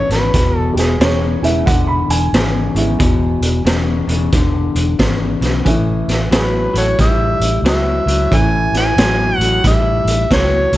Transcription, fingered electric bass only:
0.09 G#1
0.34 E1
0.75 E1
1.00 E1
1.42 E1
1.67 E1
2.09 E1
2.33 G#1
2.75 G#1
3.00 E1
3.41 E1
3.65 E1
4.07 E1
4.33 E1
4.75 E1
4.99 G#1
5.41 B1
5.66 A1
6.08 A1
6.31 A1
6.74 A1
6.98 A1
7.40 A1
7.62 C#2
8.06 C#2
8.32 A1
8.72 A1
8.97 A1
9.38 A1
9.64 A1
10.05 A1
10.30 C#2
10.72 C#2

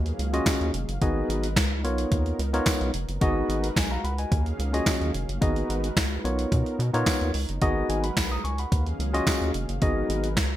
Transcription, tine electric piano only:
0.33 C#4 F4 F#4 G#4 D#5
1.01 B3 D#4 F#4 G#4 D#5
1.84 B3 D#4 F4 A#4 C#5
2.54 B3 D#4 F4 A#4 C#5
3.21 B3 D#4 F#4 G#4 D#5
3.77 D#5 G#5
3.91 F5 A#5
4.04 F#5 B5
4.19 D#5 G#5
4.73 C#4 F4 F#4 G#4 D#5
5.41 B3 D#4 F#4 G#4 D#5
6.24 B3 D#4 F4 A#4 C#5
6.94 B3 D#4 F4 A#4 C#5
7.62 B3 D#4 F#4 G#4 D#5
7.90 D#5 G#5
8.04 F#5 B5
8.32 A#5 D#6
8.44 G#5 C#6
8.59 F#5 B5
9.13 C#4 F4 F#4 G#4 D#5
9.82 B3 D#4 F#4 G#4 D#5

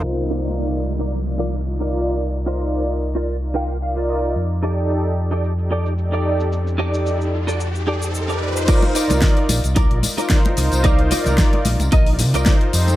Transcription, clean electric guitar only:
0.30 D#4 F4 A#4 D5
0.99 D#4 F4 A#4 D5
1.38 D#4 F4 A#4 D5
1.80 D#4 F4 A#4 D5
2.46 D#4 F4 A#4 C5
3.15 D#4 F4 A#4 D5
3.54 D#4 F4 A#4 F5 G5
3.82 F5
3.96 D#4 F4 A#4 D5
4.09 D#5
4.63 D#4 G4 A4 D5
5.31 D#4 G4 A4 D5
5.71 D#4 G4 A4 D5
6.12 D#4 G4 A4 D5
6.78 D#4 G4 A4 D5
7.47 D#4 G4 A4 D5
7.87 D#4 G4 A4 D5
8.28 D#4 G4 A4 D5
8.67 D#4 F4 A#4 D5
8.95 D#4 F4 A#4 D5
9.37 muted clean electric guitar stroke
9.76 D#4 F4 A#4 D5
10.17 D#4 F4 A#4 D5
10.57 muted clean electric guitar stroke
10.84 D#4 F4 A#4 D5
11.11 D#4 F4 A#4 D5
11.53 muted clean electric guitar stroke
11.92 D#4 F4 A#4 D#5
12.34 D#4 F4 A#4 D5
12.73 muted clean electric guitar stroke

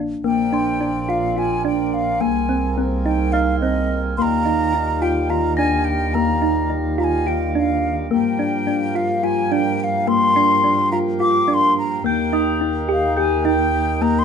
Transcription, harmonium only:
0.25 C3 A#3 D4
2.22 G#4
4.17 D#3 G3 F4
8.09 F3 A#3 G4
12.05 D#3 A#3

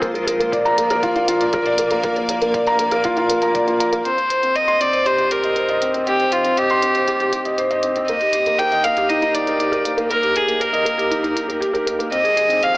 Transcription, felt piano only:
0.02 A#3
0.14 A#4
0.27 A#4
0.40 A#3
0.52 D5
0.65 A#5
0.78 A#3
0.91 A#4
1.03 F4
1.16 F4
1.28 F4
1.41 D5
1.54 A#4
1.66 D5
1.79 A#3
1.91 A#3
2.04 A#3
2.16 A#4
2.29 A#4
2.42 A#3
2.54 D5
2.67 A#5
2.79 A#3
2.92 A#4
3.05 F4
3.17 F4
3.30 A#3
3.42 A#5
3.55 D5
3.67 F4
3.80 A#5
3.92 A#3
4.05 C4
4.17 C5
4.30 C5
4.42 C4
4.55 D#5
4.68 C6
4.80 C4
4.92 C5
5.06 G4
5.18 G4
5.31 G4
5.44 D#5
5.56 C5
5.69 D#5
5.82 C4
5.94 C4
6.07 C4
6.20 C5
6.32 C5
6.45 C4
6.58 D#5
6.70 C6
6.83 C4
6.95 C5
7.08 G4
7.21 G4
7.33 G4
7.45 D#5
7.58 C5
7.70 D#5
7.84 C4
7.96 C4
8.09 A#3
8.21 G4
8.34 G4
8.47 A#3
8.59 A#4
8.72 D#5
8.85 A#3
8.97 G4
9.10 D#4
9.22 D#4
9.35 D#4
9.47 A#4
9.59 G4
9.72 A#4
9.85 A#3
9.97 A#3
10.10 A#3
10.23 G4
10.35 G4
10.48 A#3
10.60 A#4
10.73 D#5
10.85 A#3
10.98 G4
11.10 D#4
11.23 D#4
11.35 D#4
11.48 A#4
11.60 G4
11.73 A#4
11.86 A#3
11.99 A#3
12.11 C4
12.24 G#4
12.36 G#4
12.49 C4
12.62 C5
12.74 F5

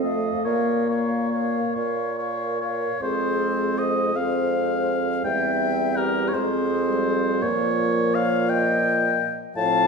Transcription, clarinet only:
0.02 A4
0.45 A#4
0.89 A#4
1.33 A#4
1.76 A#4
2.18 A#4
2.61 A#4
3.00 C4
4.15 C4
5.24 C4
6.34 C4
7.43 A#3
9.56 C4

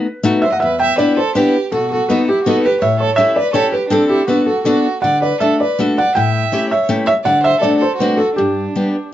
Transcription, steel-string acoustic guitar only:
0.23 A3 B3 D#4 F#4
0.62 E2
0.99 B3 D4 E4 G4
1.35 B3 D4 E4 G4
1.72 B2
2.10 B3 D#4 F#4 A4
2.46 B3 D#4 F#4 A4
2.82 A2
3.18 C#4 E4 G4 A4
3.54 C#4 E4 G4 A4
3.90 C4 D4 G4 A4
4.28 B3 D4 F#4 A4
4.65 B3 D4 F#4 A4
5.04 D3
5.40 A3 D4 F#4 A4
5.79 A3 D4 F#4 A4
6.16 A2
6.52 A3 C#4 E4 G4
6.89 A3 C#4 E4 G4
7.26 D3
7.63 A3 C4 D4 F#4
8.00 A3 C4 D4 F#4
8.38 G2
8.76 G3 B3 D4 G4

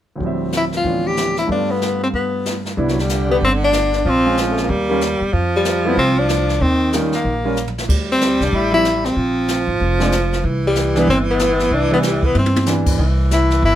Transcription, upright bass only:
2.77 C2
3.41 G1
4.05 A#1
4.69 D#2
5.21 E2
5.33 F2
5.97 C2
6.61 D#2
7.24 A#1
7.89 D2
8.40 C2
8.52 A1
9.16 A#1
9.67 G#1
9.80 F1
10.44 C2
11.07 G1
11.71 C2
12.35 G2
12.99 C2
13.62 G1

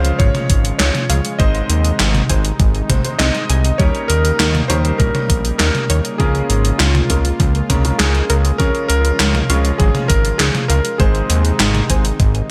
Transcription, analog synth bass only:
Already playing: C#2
0.20 G#1
0.50 G#1
0.80 C#2
1.10 C#2
1.40 G#1
1.70 D#2
2.00 G#1
2.30 G#1
2.60 G#1
2.90 G#1
3.20 C2
3.50 C2
3.80 D#2
4.10 D#2
4.40 D#2
4.70 D#2
5.00 A#1
5.30 A#1
5.60 D#2
5.90 D#2
6.20 C#2
6.50 G#1
6.80 C#2
7.10 C#2
7.40 C#2
7.70 C#2
8.00 C#2
8.30 C#2
8.60 C#2
8.90 C#2
9.20 C#2
9.50 C#2
9.80 G#1
10.10 G#1
10.40 C#2
10.70 C#2
11.00 G#1
11.30 D#2
11.60 G#1
11.90 G#1
12.20 G#1

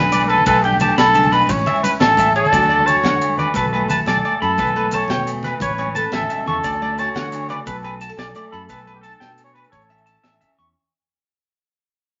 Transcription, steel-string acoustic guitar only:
Already playing: F#3 A3 D4
0.47 B2 A3
0.65 D4
0.81 A3
0.98 D3
1.14 C#3
1.31 B2
1.47 A2 C#4
1.67 E4
1.85 C#4
2.53 D3 F#3 A3 D4 F#4
2.72 A3
2.89 F#4
3.04 F#3
3.23 A3
3.55 B2
3.74 A3
3.90 A4
4.07 F#3
4.25 A3
4.57 B2
4.76 A3
4.93 A4
5.10 G3
5.27 A3
5.61 A2
5.78 C#4
5.96 A4
6.13 A2
6.30 B2
6.47 C#3
6.63 D3
6.82 A3
7.00 F#4
7.14 E3
7.32 D3
7.49 C#3
7.66 B2
8.01 F#4
8.09 A4
8.17 F#3
8.35 A3
8.69 B2
8.89 A3
9.05 D4
9.23 G3
9.40 A3
9.72 A2
9.91 C#4
10.09 E4
10.25 E3
10.43 C#4

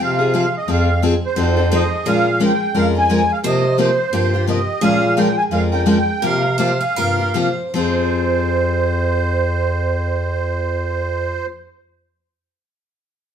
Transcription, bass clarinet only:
0.00 C3
0.67 F2
1.36 F2
2.05 A#2
2.75 F2
3.44 C3
4.13 G2
4.82 A#2
5.51 F2
6.22 C3
6.96 G2
7.75 F2

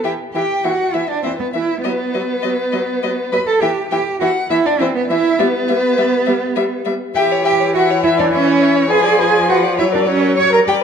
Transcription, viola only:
0.04 E3
0.35 E3
0.65 E3
0.95 E3
1.25 E3
1.55 E3
1.85 F#3
2.15 F#3
2.44 F#3
2.73 F#3
3.03 F#3
3.32 F#3
3.62 E3
3.92 E3
4.21 E3
4.50 E3
4.81 E3
5.10 E3
5.39 G3
5.69 G3
5.98 G3
6.27 G3
6.56 G3
6.86 G3
7.16 E3
8.91 F3
9.79 F#3
10.68 G3

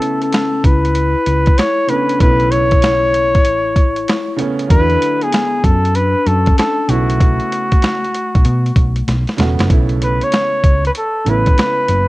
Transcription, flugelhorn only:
Already playing: A4
0.23 A4
0.65 B4
1.59 C#5
1.89 B4
2.21 B4
2.51 C#5
4.71 B4
5.23 G#4
5.65 A4
5.96 B4
6.27 A4
6.58 A4
6.90 F#4
10.03 B4
10.24 C#5
10.87 B4
10.98 A4
11.29 B4

